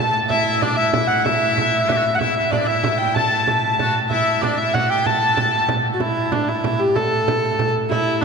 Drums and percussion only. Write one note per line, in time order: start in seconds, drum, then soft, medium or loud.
0.30 frame drum medium
0.62 frame drum medium
0.93 frame drum medium
1.10 frame drum soft
1.26 frame drum medium
1.57 frame drum medium
1.73 frame drum soft
1.89 frame drum medium
2.21 frame drum medium
2.53 frame drum medium
2.84 frame drum medium
3.00 frame drum soft
3.16 frame drum medium
3.47 frame drum medium
3.79 frame drum medium
3.94 frame drum soft
4.10 frame drum medium
4.43 frame drum medium
4.74 frame drum medium
4.90 frame drum soft
5.06 frame drum medium
5.37 frame drum medium
5.69 frame drum medium
6.00 frame drum medium
6.32 frame drum medium
6.64 frame drum medium
6.80 frame drum soft
6.96 frame drum medium
7.28 frame drum medium
7.59 frame drum medium
7.76 frame drum soft
7.92 frame drum medium